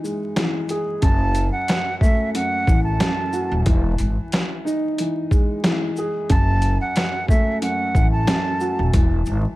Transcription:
Already playing: E3 D#4
0.04 G#3, shaker
0.36 E3, snare, closed hi-hat
0.69 G#4, closed hi-hat, shaker
1.02 F#1 F#2 A5, kick, closed hi-hat
1.35 closed hi-hat, shaker
1.52 F#5
1.68 snare, closed hi-hat
2.00 A3 E5, kick, shaker
2.34 F#2 F#5, closed hi-hat
2.67 A1 E3, kick, shaker
2.84 A5
3.00 F#2, snare, closed hi-hat
3.33 F#4, shaker
3.51 D#1
3.66 E1 E3, kick, closed hi-hat
3.98 G#1, closed hi-hat, shaker
4.32 snare, closed hi-hat
4.65 D#4, shaker
4.98 E3, closed hi-hat
5.31 G#3, kick, shaker
5.64 E3, snare, closed hi-hat
5.96 G#4, shaker
6.29 F#1 F#2 A5, kick, closed hi-hat
6.62 closed hi-hat, shaker
6.81 F#5
6.96 snare, closed hi-hat
7.28 A3 E5, kick, shaker
7.62 F#2 F#5, closed hi-hat
7.95 A1 E3, kick, shaker
8.11 A5
8.27 F#2, snare, closed hi-hat
8.60 F#4, shaker
8.79 D#1
8.93 E1 E3, kick, closed hi-hat
9.26 G#1, shaker

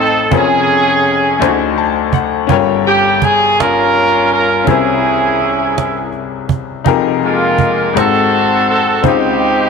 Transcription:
Already playing: A1 A2 C4 D#4 F4 A4 C5 D#5
0.00 A4
0.31 F1 F2 C#4 F4 G#4 A#4 C5, cajon bass
0.35 G#4
0.40 C#5
0.67 cajon slap
1.04 cajon slap
1.39 D2 D3 A3 D#4 E4 C5, cajon slap
1.47 F#4
1.76 A5, cajon slap
2.13 F#5, cajon bass
2.47 G1 G2 C#4 F4 G5, cajon bass
2.52 A#4 C#5
2.85 G4, cajon slap
3.22 G#4, cajon bass
3.60 C#4 F4 A#4, cajon slap
3.94 cajon slap
4.31 A#4, cajon slap
4.64 C2 C3 C#4 E4 G#4, cajon bass
4.68 C#4 E4 A#4 C5
5.03 cajon slap
5.40 cajon slap
5.78 cajon slap
6.13 cajon slap
6.49 cajon bass
6.84 F1 F2 D#4 F4 G4 G#4 A#4, cajon bass
7.22 G#3 A#3 F4, cajon slap
7.58 cajon bass
7.93 G#1 G#2 G#3 C4 D#4 F#4 A4 C5, cajon slap
8.31 cajon slap
8.68 A4, cajon slap
9.02 C#2 C#3 G#3 C4 D#4 F4 G4 C5, cajon bass
9.40 cajon slap

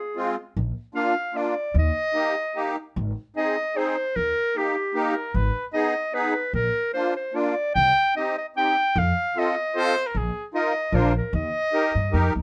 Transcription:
Already playing: G#4
0.16 G#3 C4 F4
0.57 A#1
0.95 A#3 D4 F4 F5
1.34 A#3 D4 F4 D5
1.74 D#2
1.78 D#5
2.14 A#3 D#4 G4
2.56 A#3 D#4 G4
2.96 G#1
3.36 C4 D#4 G#4 D#5
3.76 C4 D#4 G#4 C5
4.16 D#2 A#4
4.56 A#3 D#4 G4
4.95 A#3 D#4 G4 A#4
5.34 G#1 B4
5.73 B3 D#4 G#4 D#5
6.14 B3 D#4 G#4 B4
6.53 A#1 A#4
6.93 A#3 D4 F4 C5
7.16 C5
7.34 A#3 D4 F4 D5
7.75 C2 G5
8.16 C4 D#4 G4 D#5
8.38 D#5
8.56 C4 D#4 G4 G5
8.96 F2 F5
9.36 C4 F4 A4 D#5
9.76 C4 F4 A4 C5
10.07 A#4
10.15 A#1 G#4
10.54 D#4 F4 A#4 D#5
10.92 A#1 D4 F4 A#4 C5
11.17 A#4
11.33 D#2 D#5
11.73 D#4 G4 A#4
11.95 G2
12.12 F2 D#4 G4 A#4
12.36 D#2

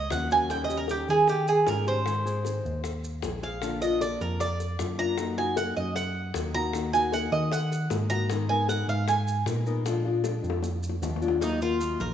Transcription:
Already playing: D#5
0.10 D#2 F#3 A#3 C#4 F#4 F#5, high bongo, low bongo, maracas
0.31 F#3 A#3 C#4 F#4 G#5, maracas
0.50 D#3 G3 C#4 G4 G5, high bongo, maracas
0.64 D#5
0.69 G3 C#4 G4, high bongo, maracas
0.77 A#4
0.88 D#3 G3 C#4 G4, high bongo, maracas
1.08 D#3 G#4, high bongo, maracas
1.28 G4, muted nylon-string guitar stroke, high bongo, maracas
1.47 G#4, high bongo, maracas
1.67 G#2 D#3 G3 C#4 G4 A#4, high bongo, low bongo, maracas
1.87 G3 C#4 G4 C5, maracas
2.06 D#3 G#3 C4 G#4, high bongo, maracas
2.25 G#3 C4 G#4, maracas
2.45 D#3 G#3 C4 G#4, high bongo, maracas
2.65 D#2, maracas
2.83 muted nylon-string guitar stroke, high bongo, maracas
3.04 maracas
3.22 A#1 D#3 G#3 C4 G#4, high bongo, low bongo, maracas
3.43 G#3 C4 G#4 F5, maracas
3.62 D3 A#3 D4 F4, high bongo, maracas
3.81 A#3 D4 F4 D#5, high bongo, maracas
4.01 D3 A#3 D4 F4 D5, high bongo, maracas
4.21 F2 A#4, high bongo, maracas
4.40 D5, muted nylon-string guitar stroke, high bongo, maracas
4.60 high bongo, maracas
4.79 F#2 D3 A#3 D4 F4, high bongo, low bongo, maracas
4.98 A#3 D4 F4 A#5, maracas
5.18 F#3 A#3 D#4 F#4, high bongo, maracas
5.37 A#3 D#4 F#4 G#5
5.56 F#3 A#3 D#4 F#4 F#5, high bongo, maracas
5.77 F#2 D#5, maracas
5.96 F#5, muted nylon-string guitar stroke, high bongo, maracas
6.34 D#2 F#3 A#3 D#4 F#4, high bongo, low bongo, maracas
6.54 A#3 D#4 F#4 A#5, maracas
6.73 D#3 A#3 D#4 F#4, high bongo, maracas
6.93 A#3 D#4 F#4 G#5, high bongo, maracas
7.12 D#3 A#3 D#4 F#4 F#5, high bongo, maracas
7.32 D#3 D#5, high bongo, maracas
7.52 F#5, muted nylon-string guitar stroke, high bongo, maracas
7.72 high bongo, maracas
7.90 G#2 D#3 A#3 D#4 F#4, high bongo, low bongo, maracas
8.10 A#3 D#4 F#4 A#5, maracas
8.30 D#3 G#3 B3 D#4 A#4, high bongo, maracas
8.49 G#3 B3 D#4 A#4 G#5
8.69 G#3 B3 D#4 A#4 F#5, high bongo, maracas
8.88 G#2 F5, maracas
9.08 G#5, muted nylon-string guitar stroke, high bongo, maracas
9.28 maracas
9.46 A#2 G#3 B3 D#4 A#4, high bongo, low bongo, maracas
9.66 G#3 B3 D#4 A#4, maracas
9.85 F3 G#3 D4 F4, high bongo, maracas
10.05 G#3 D4 F4, high bongo
10.24 F3 G#3 D4 F4, high bongo, maracas
10.43 F2, maracas
10.50 high bongo
10.62 muted nylon-string guitar stroke, low bongo, maracas
10.83 maracas
10.89 low bongo
11.02 D#2 F3 G#3 D4 F4, low bongo, maracas
11.16 low bongo
11.22 G#3 D4 F4, maracas
11.28 low bongo
11.40 D#3 F#3 A#3 D#4 F4, cowbell, maracas
11.61 F#3 A#3 F4, maracas
11.81 D#3 F#3 A#3 F4, cowbell, maracas
12.00 A#1 A#4, cowbell, maracas

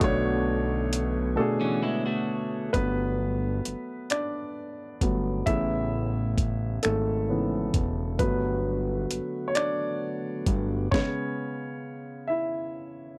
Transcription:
Already playing: D3 A3 B3 A4 F5
0.00 B1 B2 A3 D4 F#4 C#5, kick, closed hi-hat
0.93 closed hi-hat
1.36 B2 A3 D4 A4
1.41 G#4
1.61 E3 C#4
1.83 G#3 E4
2.06 A3 F#4
2.73 G1 F#3 A3 B3 B4, kick, closed hi-hat
3.65 G1, closed hi-hat
4.10 D4 D5, finger snap, closed hi-hat
5.01 G1 F#3 A3 B3, kick, closed hi-hat
5.46 A1 C#3 B3 E4 G#4 E5, kick, closed hi-hat
6.38 kick, closed hi-hat
6.83 G#1 A3 A4, finger snap, closed hi-hat
7.29 C#3 E3 B3
7.74 E1, kick, closed hi-hat
8.18 G1 D3 F#3 A3 B3 F#4 B4, kick, closed hi-hat
9.11 G1, closed hi-hat
9.48 C#5
9.55 D4 D5, finger snap, closed hi-hat
10.46 G1, kick, closed hi-hat
10.91 C#3 G#3 B3 C#4 C#5, kick, snare
12.28 E4 E5

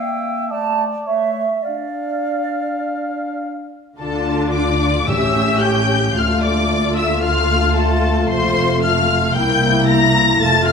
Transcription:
Already playing: A#3 E5 G5
0.50 A3 D5 A5
1.06 A3 C#5 E5
1.64 D4 D5 F5
4.00 D2 D3 D4 F4 A4 A5
4.54 D5 D6
5.08 A1 A2 C#4 G4 E5 E6
5.61 G5 G6
6.14 D2 A3 F4 F5 F6
6.42 D5 D6
6.97 E5 E6
7.24 F5 F6
7.77 A4 A5
8.30 F1 F2 C5 C6
8.83 F5 F6
9.35 C2 A#3 E4 G5 G6
9.88 A#5 A#6
10.41 F1 F2 A3 F4 A5 A6
10.68 F5 F6

